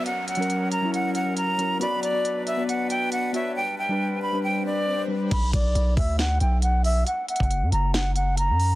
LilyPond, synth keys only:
\new Staff \with { instrumentName = "Synth keys" } { \time 4/4 \key b \minor \tempo 4 = 137 r8. <fis cis' ais'>8. r16 <fis cis' e'>4. r16 <fis cis' ais'>8 | <b fis' d''>8. <b fis' d''>8. r16 <b fis' d''>4. r16 <b fis' cis''>8 | r8. <g d' b'>8. r16 <g d' b'>4. r16 <g d' b'>8 | r1 |
r1 | }